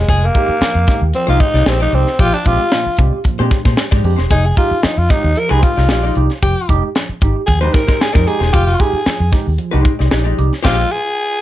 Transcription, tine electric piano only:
0.09 0.22 F3 medium
0.35 0.48 G#3 loud
0.35 0.48 D#4 medium
0.35 0.49 G4 loud
0.50 0.54 D#4 soft
0.50 0.54 G4 soft
0.62 0.75 F3 medium
0.88 1.01 G#3 medium
0.88 1.01 D#4 medium
0.88 1.01 G4 medium
1.02 1.07 D#4 soft
1.02 1.07 G4 soft
1.14 1.28 F3 medium
1.29 1.40 G#3 medium
1.29 1.40 D#4 medium
1.29 1.40 G4 medium
1.41 1.46 D#4 soft
1.41 1.47 G4 soft
1.67 1.80 D#4 medium
1.67 1.81 G4 medium
1.82 1.93 F3 medium
1.94 2.07 D#4 medium
1.94 2.07 G4 medium
2.20 2.34 A#2 medium
2.20 2.33 F3 medium
2.47 2.60 G#3 medium
2.47 2.60 C4 medium
2.47 2.60 D4 medium
2.47 2.60 G4 loud
2.61 2.66 D4 soft
2.61 2.66 G4 soft
2.73 2.86 A#2 medium
2.73 2.86 F3 medium
2.99 3.13 G#3 medium
2.99 3.12 C4 medium
2.99 3.12 D4 medium
2.99 3.12 G4 medium
3.13 3.18 D4 soft
3.13 3.18 G4 soft
3.25 3.39 A#2 medium
3.25 3.39 F3 medium
3.39 3.51 G#3 medium
3.39 3.51 C4 medium
3.39 3.51 D4 medium
3.39 3.51 G4 medium
3.52 3.57 D4 soft
3.52 3.57 G4 soft
3.79 3.84 D4 soft
3.79 3.84 G4 soft
3.92 4.04 A#2 medium
3.92 4.04 F3 medium
4.04 4.18 G#3 medium
4.04 4.18 C4 medium
4.04 4.18 D4 medium
4.04 4.18 G4 medium
4.31 4.44 F3 medium
4.57 4.71 G#3 medium
4.57 4.70 D#4 medium
4.57 4.71 G4 medium
4.71 4.76 D#4 soft
4.71 4.77 G4 soft
4.84 4.97 F3 medium
5.10 5.24 G#3 medium
5.10 5.24 D#4 medium
5.10 5.24 G4 medium
5.25 5.30 D#4 soft
5.25 5.30 G4 soft
5.37 5.50 F3 medium
5.51 5.63 G#3 medium
5.51 5.63 D#4 medium
5.51 5.63 G4 medium
5.64 5.69 D#4 soft
5.64 5.69 G4 soft
5.90 6.03 D#4 medium
5.90 6.04 G4 medium
6.04 6.16 F3 medium
6.17 6.30 D#4 medium
6.17 6.30 G4 medium
6.43 6.56 F3 medium
6.69 6.82 G#3 medium
6.69 6.83 D#4 medium
6.69 6.83 G4 loud
6.84 6.88 D#4 soft
6.84 6.88 G4 soft
6.96 7.09 F3 medium
7.22 7.35 G#3 medium
7.22 7.35 D#4 medium
7.22 7.35 G4 medium
7.36 7.41 D#4 soft
7.36 7.41 G4 soft
7.49 7.62 F3 medium
7.62 7.74 G#3 medium
7.62 7.74 D#4 medium
7.62 7.74 G4 medium
7.75 7.80 D#4 soft
7.75 7.80 G4 soft
8.01 8.06 D#4 soft
8.01 8.06 G4 soft
8.15 8.27 F3 medium
8.27 8.40 G#3 medium
8.27 8.41 D#4 medium
8.27 8.41 G4 medium
8.53 8.67 F3 medium
8.79 8.93 G#3 medium
8.79 8.93 D#4 medium
8.79 8.93 G4 loud
8.94 8.99 D#4 soft
8.94 8.99 G4 soft
9.06 9.20 F3 medium
9.32 9.46 G#3 medium
9.32 9.45 D#4 medium
9.32 9.46 G4 medium
9.47 9.52 D#4 soft
9.47 9.52 G4 soft
9.59 9.72 F3 medium
9.72 9.85 G#3 medium
9.72 9.84 D#4 medium
9.72 9.84 G4 medium
9.85 9.91 D#4 soft
9.85 9.91 G4 soft
10.11 10.25 D#4 medium
10.11 10.25 G4 medium
10.26 10.38 F3 medium
10.38 10.52 D#4 medium
10.38 10.52 G4 medium
10.64 10.83 A#2 medium
10.64 10.83 F3 loud

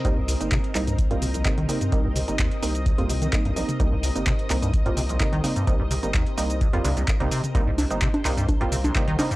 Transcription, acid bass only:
0.05 0.12 C2 loud
0.17 0.21 G2 medium
0.28 0.35 C2 medium
0.52 0.58 C3 loud
0.75 0.82 C2 medium
0.87 0.97 G2 medium
1.11 1.15 G2 medium
1.22 1.26 C3 medium
1.34 1.43 A#1 medium
1.58 1.67 D#3 loud
1.81 1.90 G2 medium
1.92 1.99 C2 medium
2.05 2.08 G2 medium
2.16 2.20 C3 medium
2.39 2.49 D#2 medium
2.86 2.93 C2 medium
2.98 3.04 F2 medium
3.09 3.14 C3 medium
3.22 3.28 D#3 medium
3.45 3.51 G2 medium
3.56 3.63 A#1 medium
3.80 3.87 C2 loud
3.92 3.96 G2 medium
4.03 4.10 C2 medium
4.27 4.33 C3 loud
4.50 4.57 C2 medium
4.62 4.72 G2 medium
4.86 4.90 G2 medium
4.97 5.01 C3 medium
5.09 5.18 A#1 medium
5.33 5.42 D#3 loud
5.56 5.65 G2 medium
5.67 5.74 C2 medium
5.80 5.83 G2 medium
5.91 5.95 C3 medium
6.14 6.24 D#2 medium
6.61 6.68 C2 medium
6.73 6.79 F2 medium
6.84 6.91 C2 medium
6.97 7.03 C2 medium
7.20 7.29 C2 medium
7.31 7.41 C3 medium
7.55 7.62 C2 loud
7.67 7.71 G2 medium
7.78 7.85 C2 medium
8.02 8.08 C3 loud
8.25 8.32 C2 medium
8.37 8.47 G2 medium
8.61 8.64 G2 medium
8.72 8.76 C3 medium
8.84 8.93 A#1 medium
9.08 9.17 D#3 loud
9.31 9.36 G2 medium

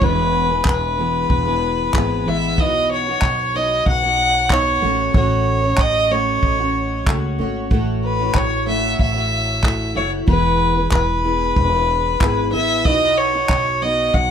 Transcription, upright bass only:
0.02 0.62 E1 medium
0.65 1.26 E1 medium
1.30 1.90 E1 medium
1.94 2.23 G#1 medium
2.26 2.58 A1 medium
2.58 3.18 B1 medium
3.22 3.82 B1 medium
3.86 4.78 B1 medium
4.82 5.12 A1 medium
5.14 5.75 A1 loud
5.78 6.38 A1 medium
6.43 7.07 A1 medium
7.07 7.36 C#2 medium
7.39 7.69 G#1 medium
7.71 8.31 A1 medium
8.35 8.95 A1 medium
8.99 9.92 A1 medium
9.96 10.25 F#1 medium
10.28 10.88 E1 medium
10.92 11.52 E1 medium
11.56 12.17 E1 medium
12.21 12.50 G#1 medium
12.53 12.85 A1 medium
12.85 13.45 B1 medium
13.49 14.10 B1 medium
14.14 14.31 B1 loud

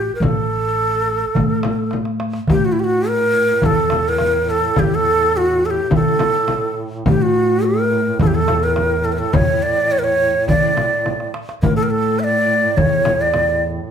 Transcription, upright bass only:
0.20 1.22 A1 medium
1.36 2.36 A2 medium
2.50 3.50 A2 medium
3.64 4.64 E2 medium
4.77 5.78 E2 medium
5.91 6.17 C#3 medium
7.06 8.07 A2 medium
8.19 9.21 E2 medium
9.34 10.35 E2 medium
10.48 10.73 C#3 medium
11.62 12.64 A2 medium
12.77 13.78 E2 medium

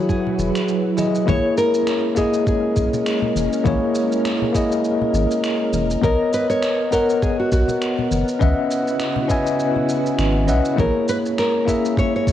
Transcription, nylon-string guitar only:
0.09 0.94 G#4 medium
1.29 1.56 C#5 loud
1.58 2.13 A#4 medium
2.17 2.47 G#4 medium
2.48 3.33 G#4 medium
6.03 6.31 A#4 loud
6.34 6.49 B4 loud
6.50 6.92 C#5 loud
6.92 7.20 A#4 medium
7.22 7.39 G#4 loud
7.39 7.51 F#4 medium
7.52 8.07 F#4 medium
10.79 11.09 A#4 loud
11.09 11.17 B4 loud
11.39 11.94 A#4 loud
11.98 12.15 C#5 loud
12.16 12.32 C#5 medium

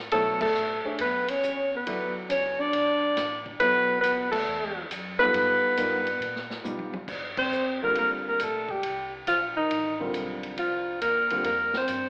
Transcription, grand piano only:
0.12 0.38 F#3 medium
0.12 0.39 B3 medium
0.12 0.39 E4 medium
0.12 0.39 A4 medium
0.12 0.39 C#5 medium
0.84 0.97 A3 medium
0.84 0.98 D4 medium
0.84 0.98 G#4 medium
0.84 0.98 C#5 medium
0.84 0.98 E5 medium
1.87 3.08 F#3 medium
1.87 3.09 B3 medium
1.87 3.08 E4 medium
1.87 3.08 A4 medium
1.87 3.09 D5 medium
3.61 4.27 F#3 medium
3.61 4.27 B3 medium
3.61 4.27 E4 medium
3.61 4.28 A4 medium
3.61 4.28 C#5 medium
5.20 5.75 G3 medium
5.20 5.75 B3 medium
5.20 5.75 D#4 medium
5.20 5.75 F4 medium
5.20 5.75 A4 medium
5.78 6.04 G3 medium
5.78 6.04 B3 medium
5.78 6.04 D#4 medium
5.78 6.04 F4 medium
5.78 6.04 A#4 medium
6.64 6.91 G3 medium
6.64 6.91 B3 medium
6.64 6.91 D#4 medium
6.64 6.91 F4 medium
6.64 6.91 G4 medium
7.82 8.37 D3 medium
7.82 8.37 G3 medium
7.82 8.37 C4 medium
7.82 8.37 F4 medium
7.82 8.37 A#4 medium
10.00 10.55 D3 medium
10.00 10.55 G3 medium
10.00 10.55 C4 medium
10.00 10.55 F4 medium
10.00 10.55 A#4 medium
11.31 11.44 D3 medium
11.31 11.44 G3 medium
11.31 11.44 C4 medium
11.31 11.44 F4 medium
11.31 11.44 A#4 medium

